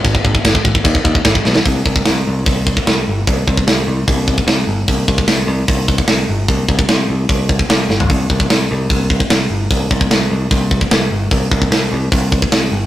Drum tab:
CC |x---x---x---x---|----------------|----------------|----------------|
HH |----------------|o---o---o---o---|o---o---o---o---|o---o---o---o---|
SD |----o-------o-oo|----o-------o---|----o-------o---|----o-------o---|
FT |----------------|----------------|----------------|----------------|
BD |oooooooooooooo--|o-oo----o-oo----|o-oo----o-oo----|o-oo----o-oo----|

CC |----------------|----------------|----------------|----------------|
HH |o---o---o---o---|o---o---o---o---|o---o---o---o---|o---o---o---o---|
SD |----o-------o-o-|----o-------o---|----o-------o---|----o-------o---|
FT |---------------o|----------------|----------------|----------------|
BD |o-oo----o-oo----|o-oo----o-oo----|o-oo----o-oo----|o-oo----o-oo----|